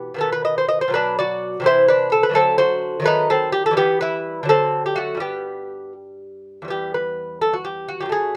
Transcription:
0.00 0.13 B2 medium
0.00 0.16 E3 soft
0.00 0.16 B3 medium
0.00 0.17 G4 medium
0.14 0.87 B2 soft
0.14 0.90 D#3 soft
0.18 0.91 B3 soft
0.18 0.32 A4 medium
0.32 0.44 B4 medium
0.45 0.57 D#5 medium
0.58 0.68 C5 medium
0.68 0.81 D#5 medium
0.81 0.93 C5 medium
0.88 1.59 B2 medium
0.88 1.61 F#3 soft
0.92 1.63 B3 soft
0.92 1.17 D4 medium
0.92 1.17 B4 medium
1.19 1.64 F#4 medium
1.19 1.64 D5 medium
1.60 2.29 C3 medium
1.60 2.31 E3 medium
1.60 2.33 C4 soft
1.66 1.88 E4 medium
1.66 1.88 C5 loud
1.88 2.11 D4 medium
1.88 2.11 B4 loud
2.12 2.24 A4 medium
2.23 2.36 B4 medium
2.29 3.01 D3 medium
2.29 2.99 F#3 soft
2.33 3.03 A3 soft
2.33 2.58 C4 medium
2.33 2.58 A4 loud
2.58 3.03 F#4 medium
2.58 3.04 C5 loud
3.00 3.71 D#3 medium
3.00 3.72 F#3 medium
3.04 3.30 A3 medium
3.04 3.29 D#4 medium
3.04 3.28 B4 loud
3.30 3.52 C4 medium
3.30 3.52 A4 loud
3.52 3.65 G4 medium
3.66 3.76 A4 loud
3.71 4.43 E3 medium
3.71 4.45 G3 medium
3.77 3.99 B3 medium
3.77 4.00 G4 loud
4.01 4.46 E4 medium
4.01 4.47 B4 loud
4.43 5.17 D3 medium
4.43 5.17 F#3 medium
4.49 4.83 C4 medium
4.49 4.84 A4 loud
4.86 4.98 G4 medium
4.96 5.21 A3 medium
4.96 5.20 F#4 medium
5.15 6.63 G2 medium
5.15 6.63 G3 soft
5.20 5.92 B3 medium
5.20 5.92 G4 medium
6.62 8.02 E2 soft
6.62 8.05 G3 soft
6.68 8.09 B3 soft
6.68 6.94 G4 medium
6.94 7.40 B4 medium
7.41 7.54 A4 medium
7.54 7.66 F#4 medium
7.65 7.89 G4 medium
7.88 8.01 F#4 medium
8.00 8.36 F#2 soft
8.00 8.12 G4 medium
8.06 8.36 F#3 soft
8.06 8.36 A3 soft
8.12 8.36 G#4 medium

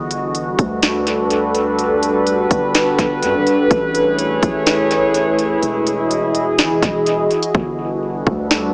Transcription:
0.00 0.56 G1 loud
0.00 3.67 G3 medium
0.00 3.67 D4 medium
0.00 3.67 F#4 medium
0.00 3.67 A4 medium
0.00 5.59 B4 medium
0.11 closed hi-hat medium
0.35 closed hi-hat medium
0.59 2.47 D2 loud
0.59 kick loud
0.59 closed hi-hat medium
0.82 snare loud
0.82 closed hi-hat medium
1.07 closed hi-hat medium
1.30 closed hi-hat medium
1.55 closed hi-hat medium
1.79 closed hi-hat medium
2.03 closed hi-hat medium
2.27 closed hi-hat medium
2.51 2.97 G1 loud
2.51 kick loud
2.51 closed hi-hat medium
2.75 snare loud
2.75 closed hi-hat medium
2.99 3.24 G1 loud
2.99 kick medium
2.99 closed hi-hat medium
3.23 3.36 G2 loud
3.23 closed hi-hat medium
3.35 3.46 G1 loud
3.47 closed hi-hat medium
3.71 4.40 A1 loud
3.71 5.61 A3 medium
3.71 7.51 E4 medium
3.71 5.61 G#4 medium
3.71 5.61 C#5 medium
3.71 kick loud
3.71 closed hi-hat medium
3.95 closed hi-hat medium
4.19 closed hi-hat medium
4.43 5.59 A1 loud
4.43 kick loud
4.43 closed hi-hat medium
4.66 snare loud
4.66 closed hi-hat medium
4.91 closed hi-hat medium
5.14 closed hi-hat medium
5.39 closed hi-hat medium
5.62 6.60 E1 loud
5.62 7.53 E3 medium
5.62 8.74 F#4 medium
5.62 7.53 G#4 medium
5.62 7.53 D#5 medium
5.62 closed hi-hat medium
5.87 closed hi-hat medium
6.11 closed hi-hat medium
6.35 closed hi-hat medium
6.58 6.72 G#1 loud
6.58 snare loud
6.58 closed hi-hat medium
6.70 6.82 E1 medium
6.82 7.29 E1 loud
6.82 kick loud
6.82 closed hi-hat medium
7.06 closed hi-hat medium
7.31 closed hi-hat soft
7.43 closed hi-hat medium
7.54 8.24 G1 loud
7.54 8.74 G3 medium
7.54 8.74 D4 medium
7.54 8.74 A4 medium
7.54 8.74 B4 medium
7.54 kick loud
8.27 8.74 D2 loud
8.27 kick medium
8.51 snare loud

